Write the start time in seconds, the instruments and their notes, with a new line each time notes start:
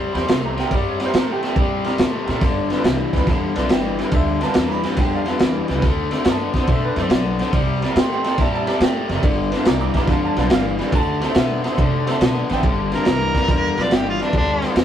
Already playing: overdriven electric guitar C3 G3
0.13 upright bass E2, overdriven electric guitar C3 G3, upright piano D4 E4 G4 C5 B5, snare, ride
0.18 upright piano C6
0.27 upright bass C2, overdriven electric guitar C3 A3, snare, ride
0.44 upright piano A#5
0.57 overdriven electric guitar C3 A3, upright piano G4 A#4 G5, snare, ride
0.64 upright piano D4 E4 G4 A#4
0.71 upright bass G2, overdriven electric guitar C3 G3, kick, ride
0.75 upright piano D5
0.89 upright piano C#5
1.00 overdriven electric guitar C3 G3, upright piano G4 A#4, snare, ride
1.06 upright piano D4 E4 G4 A#4 C5
1.14 upright bass A2, overdriven electric guitar C3 A3, snare, ride
1.20 upright piano A#4
1.32 upright piano G4
1.42 overdriven electric guitar C3 A3, upright piano D4 G4 A#4, snare, ride
1.47 upright piano E4 G4 A4
1.56 upright bass A#2, overdriven electric guitar C3 G3, kick, ride
1.84 overdriven electric guitar C3 G3, upright piano D4 E4 G4 A#4, snare, ride
1.98 upright bass A2, overdriven electric guitar C3 A3, snare, ride
2.25 upright bass A#2, overdriven electric guitar C3 A3, upright piano G4 A#4, snare, ride
2.32 upright piano D4 E4 G4 A#4
2.41 upright bass G1, overdriven electric guitar G2 D3, kick, snare, ride
2.68 overdriven electric guitar G2 D3, upright piano A4 B4, snare, ride
2.75 upright piano D4 F4 A4 B4
2.84 upright bass C2, overdriven electric guitar G2 E3, snare, ride
3.11 upright bass D2, overdriven electric guitar G2 E3, upright piano A4 B4, kick, snare, ride
3.17 upright piano D4 F4 A4 B4 B5
3.27 upright bass E2, overdriven electric guitar G2 D3, kick, snare, ride
3.54 upright bass B1, overdriven electric guitar G2 D3, upright piano D4 F4 A4 B4, snare, ride
3.69 upright bass G1, overdriven electric guitar G2 E3, upright piano G5, snare, ride
3.96 overdriven electric guitar G2 E3, upright piano A4 B4, snare, ride
4.03 upright piano D4 F4 A4 B4
4.11 upright bass D2, overdriven electric guitar G2 D3, upright piano E5, kick, ride
4.39 overdriven electric guitar G2 D3, upright piano A4 B4 G#5, snare, ride
4.43 upright piano A5
4.47 upright piano D4 F4 A4 B4
4.54 upright bass E2, overdriven electric guitar G2 E3, snare, ride
4.68 upright piano A#5
4.72 upright piano B5
4.83 overdriven electric guitar G2 E3, upright piano A4 B4, snare, ride
4.90 upright piano D4 F4 A4 B4
4.96 upright bass F2, overdriven electric guitar G2 D3, upright piano F#5, kick, snare, ride
5.01 upright piano G5
5.14 upright piano D5 F5
5.26 overdriven electric guitar G2 D3, upright piano D4 F4 A4 B4, snare, ride
5.39 upright bass E2, overdriven electric guitar G2 E3, snare, ride
5.68 upright bass C#2, overdriven electric guitar G2 E3, upright piano A4 B4, snare, ride
5.76 upright piano D4 F4 A4 B4
5.82 upright bass D2, overdriven electric guitar D3 A3, kick, snare, ride
6.11 overdriven electric guitar D3 A3, upright piano A4 C5, snare, ride
6.20 upright piano E4 F#4 A4 C5
6.24 upright bass G2, overdriven electric guitar D3 B3, upright piano G#5, snare, ride
6.30 upright piano A5
6.53 upright bass A2, overdriven electric guitar D3 B3, upright piano A4 C5, kick, snare, ride
6.62 upright piano E4 F#4 A4 C5
6.67 upright bass B2, overdriven electric guitar D3 A3, kick, ride
6.72 upright piano E5
6.84 upright piano B4
6.96 upright bass F#2, overdriven electric guitar D3 A3, upright piano E4 F#4 A4 C5 D5, snare, ride
7.09 upright bass B1, overdriven electric guitar D3 B3, upright piano C#5, snare, ride
7.14 upright piano D5
7.39 overdriven electric guitar D3 B3, upright piano A4 C5, snare, ride
7.46 upright piano E4 F#4 A4 C5
7.53 upright bass C2, overdriven electric guitar C3 G3, kick, ride
7.81 overdriven electric guitar C3 G3, upright piano A#4 D5, snare, ride
7.90 upright piano E4 G4 A#4 D5
7.94 upright bass A2, overdriven electric guitar C3 A3, upright piano B5, snare, ride
7.98 upright piano G5 C6
8.13 upright piano G5 C6
8.24 overdriven electric guitar C3 A3, upright piano A#4 D5 G5 C6, snare, ride
8.30 upright piano E4 G4 A#4 D5
8.38 upright bass A#2, overdriven electric guitar C3 G3, upright piano E5 A5, kick, snare, ride
8.54 upright piano E5 A5
8.65 overdriven electric guitar C3 G3, upright piano E4 G4 A#4 D5 E5 A5, snare, ride
8.80 upright bass A2, overdriven electric guitar C3 A3, upright piano D5 G5, snare, ride
9.08 upright bass F#1, overdriven electric guitar C3 A3, upright piano A#4 D5, snare, ride
9.15 upright piano E4 G4 A#4 D5
9.23 upright bass G1, overdriven electric guitar G2 D3, kick, ride
9.50 overdriven electric guitar G2 D3, upright piano B4 D5, snare, ride
9.59 upright piano F4 A4 B4 E5 C#6
9.65 upright bass C2, overdriven electric guitar G2 E3, upright piano A#5 D6, snare, ride
9.80 upright piano A#5 D6
9.94 upright bass D2, overdriven electric guitar G2 E3, upright piano B4 D5 A#5 D6, kick, snare, ride
10.01 upright piano F4 A4 B4 D5
10.07 upright bass E2, overdriven electric guitar G2 D3, upright piano F5 A5, kick, snare, ride
10.24 upright piano F5 A5
10.36 upright bass B1, overdriven electric guitar G2 D3, upright piano F4 A4 B4 D5 F5 A5, snare, ride
10.49 upright bass G1, overdriven electric guitar G2 E3, snare, ride
10.54 upright piano F5
10.79 overdriven electric guitar G2 E3, upright piano B4 D5, snare, ride
10.86 upright piano F4 A4 B4 D5
10.92 upright bass D2, overdriven electric guitar D3 A3, upright piano A5, kick, ride
11.21 overdriven electric guitar D3 A3, upright piano C5 E5 A5, snare, ride
11.28 upright piano F#4 A4 C5 E5
11.35 upright bass B2, overdriven electric guitar D3 B3, upright piano E5, snare, ride
11.64 overdriven electric guitar D3 B3, upright piano C5 E5, snare, ride
11.71 upright piano F#4 A4 C5 E5
11.77 upright bass C3, overdriven electric guitar D3 A3, kick, ride
12.06 overdriven electric guitar D3 A3, upright piano F#4 A4 C5 E5, snare, ride
12.11 upright piano A5
12.21 upright bass B2, overdriven electric guitar D3 B3, snare, ride
12.49 upright bass A1, overdriven electric guitar D3 B3, upright piano C5 D5 F#5 G5, snare, ride
12.56 upright piano F#4 A4 C5 E5
12.63 upright bass G1, overdriven electric guitar G2 D3, kick, ride
12.91 overdriven electric guitar G2 D3, harmonica A#4, upright piano B4 D5, snare, ride
12.99 upright piano F4 A4 B4 D5
13.05 upright bass C2, overdriven electric guitar G2 E3, snare, ride
13.34 upright bass D2, overdriven electric guitar G2 E3, upright piano B4 D5, kick, snare, ride
13.42 upright piano F4 A4 B4 D5
13.48 upright bass E2, overdriven electric guitar G2 D3, kick, snare, ride
13.78 upright bass B1, overdriven electric guitar G2 D3, upright piano F4 A4 B4 D5, snare, ride
13.82 harmonica D5
13.91 upright bass G1, overdriven electric guitar G2 E3, snare, ride
13.95 harmonica G4
14.09 harmonica F4
14.19 overdriven electric guitar G2 E3, harmonica D4, upright piano B4 D5, snare, ride
14.26 upright piano F4 A4 B4 D5
14.33 upright bass D2, overdriven electric guitar G2 D3, kick, ride
14.37 harmonica D4
14.61 overdriven electric guitar G2 D3, upright piano B4 D5, snare, ride
14.69 upright piano F4 A4 B4 D5
14.76 upright bass E2, overdriven electric guitar G2 E3, snare, ride